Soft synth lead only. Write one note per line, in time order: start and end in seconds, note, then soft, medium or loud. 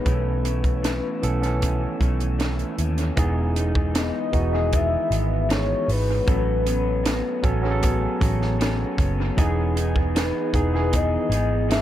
0.00 2.02 B4 loud
3.98 4.77 D#5 loud
4.75 5.51 E5 loud
5.52 5.92 C#5 loud
5.91 8.22 B4 loud
10.17 10.97 B4 medium
10.95 11.72 D#5 loud
11.71 11.82 E5 loud